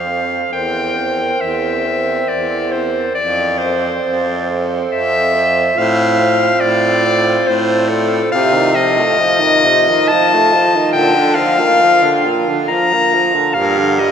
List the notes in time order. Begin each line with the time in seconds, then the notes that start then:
Already playing: F2 F5
0.09 C4 A4
0.52 E2 C4 A#4 G5
0.96 C4 A#4
1.41 E2 E5
1.86 C4 A#4
2.29 E2 D5
2.72 C4 A#4 C5
3.15 F2 D5
3.58 A4 C5
3.62 C4
4.05 F2
4.50 C4 A4
4.92 F2 E5
5.35 C4 A4
5.75 A2 C4 F4 F5
6.18 C4 F4
6.60 A2 D5
7.01 C4 F4
7.46 A2 C5
7.87 C4 F4 A4
8.31 C3 F4 F5
8.53 D#3
8.75 F3 D#5
8.98 A3
9.18 F3
9.40 D#3
9.65 C3
9.89 D#3
10.08 F3 A5
10.33 A3
10.54 F3
10.76 D#3
10.93 A#2 D3 G5
11.15 D3
11.35 F3 F5
11.59 A#3
11.81 F3
12.03 D3
12.25 A#2
12.48 D3
12.68 F3 A#5
12.93 A#3
13.14 F3
13.35 D3
13.54 G2 A#2 G4 F5
13.78 D3
13.99 G3 D#5